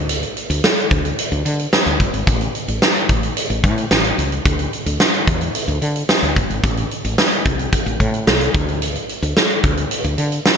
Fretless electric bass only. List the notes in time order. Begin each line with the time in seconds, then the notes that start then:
Already playing: D2
0.50 D2
0.91 D2
1.32 D2
1.45 D3
1.86 D2
2.00 G1
2.13 G#1
2.27 A1
2.68 A1
3.09 A1
3.50 A1
3.64 A2
3.91 A1
4.18 C#2
4.45 D2
4.86 D2
5.27 E2
5.68 D2
5.82 D3
6.22 D2
6.36 G1
6.50 G#1
6.64 A1
7.04 A1
7.46 C2
7.86 A1
8.00 A2
8.27 C2
8.54 D2
9.22 D2
9.64 D2
10.04 D2
10.18 D3